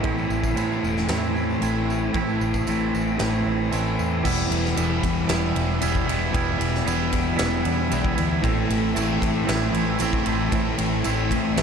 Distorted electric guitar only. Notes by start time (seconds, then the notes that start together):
0.02 A2 E3 A3
0.54 A2 E3 A3
1.07 A2 E3 A3
1.61 A2 E3 A3
2.13 A2 E3 A3
2.67 A2 E3 A3
3.19 A2 E3 A3
3.71 A2 E3 A3
4.24 E2 B2 E3
4.51 B2 E3
4.76 E2 B2 E3
5.03 B2 E3
5.80 E2 B2 E3
6.06 B2 E3
6.31 E2 B2 E3
6.58 B2 E3
6.84 E2 B2 E3
7.11 B2 E3
7.89 E2 B2 E3
8.17 B2 E3
8.42 A2 E3 A3
8.69 E3 A3
8.94 A2 E3 A3
9.20 E3 A3
9.98 A2 E3 A3
10.25 E3 A3
10.50 A2 E3 A3
10.77 E3 A3
11.04 A2 E3 A3
11.30 E3 A3